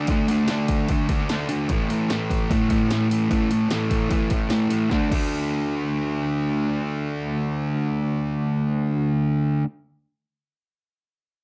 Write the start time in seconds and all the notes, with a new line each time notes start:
Already playing: D4
0.07 D3 A3, kick, open hi-hat
0.11 D4
0.28 A3 D4, open hi-hat
0.48 D3 A3 D4, snare, open hi-hat
0.68 kick, open hi-hat
0.89 D3 A3, kick, open hi-hat
0.93 D4
1.09 D4, kick, open hi-hat
1.13 A3
1.20 snare
1.29 D3 A3 D4, snare, open hi-hat
1.49 A3 D4, open hi-hat
1.69 A2 E3 A3, kick, open hi-hat
1.90 E3 A3, open hi-hat
2.10 A2 E3 A3, snare, open hi-hat
2.30 kick, open hi-hat
2.51 A2 E3 A3, kick, open hi-hat
2.69 E3 A3, kick, open hi-hat
2.89 A2 E3 A3, snare, open hi-hat
3.09 E3 A3, open hi-hat
3.30 A2 E3 A3, kick, open hi-hat
3.50 E3 A3, open hi-hat
3.70 A2 E3 A3, snare, open hi-hat
3.91 kick, open hi-hat
4.10 A2 E3 A3, kick, open hi-hat
4.30 E3 A3, kick, open hi-hat
4.50 A2 E3 A3, snare, open hi-hat
4.69 E3 A3, open hi-hat
4.90 D3 A3 D4, kick, snare
5.10 D3 A3, kick, crash
5.15 D4